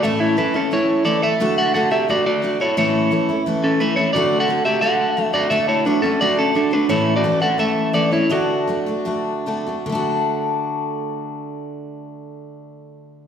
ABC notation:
X:1
M:4/4
L:1/16
Q:1/4=175
K:D
V:1 name="Clean electric guitar"
[Ae]2 [Ec]2 [EB]2 [CA]2 [Ec]4 [Ad]2 [Ae]2- | [Ae]2 [Af]2 [Af]2 [Ge]2 [Fd]2 [Fd]4 [Ec]2 | [Ec]8 z2 [CA]2 [EB]2 [Ec]2 | [Fd]3 [Af]3 [Ge]2 [Af]6 [Fd]2 |
[Ae]2 [Ec]2 [DB]2 [CA]2 [Fd]2 [CA]2 [DA]2 [DB]2 | [Ec]3 [Fd]3 [Af]2 [Ae]4 [Ad]2 [Ec]2 | [Fd]12 z4 | z16 |
z16 |]
V:2 name="Steel-string acoustic guitar"
[A,,E,A,CE]4 [E,A,CE]2 [A,CE]2 [E,A,CE]4 [E,A,CE]2 [A,CE]2 | [D,A,DF]4 [D,A,DF]2 [A,DF]2 [D,A,DF]4 [D,A,DF]2 [A,DF]2 | [A,,E,A,CE]4 [E,A,CE]2 [A,CE]2 [E,A,CE]4 [E,A,CE]2 [A,CE]2 | [D,A,DF]4 [D,A,DF]2 [A,DF]2 [D,A,DF]4 [D,A,DF]2 [A,DF]2 |
[D,A,DF]4 [D,A,DF]2 [A,DF]2 [D,A,DF]4 [D,A,DF]2 [A,DF]2 | [A,,E,A,CE]4 [E,A,CE]2 [A,CE]2 [E,A,CE]4 [E,A,CE]2 [A,CE]2 | [D,A,DF]4 [D,A,DF]2 [A,DF]2 [D,A,DF]4 [D,A,DF]2 [A,DF]2 | [D,A,DF]16- |
[D,A,DF]16 |]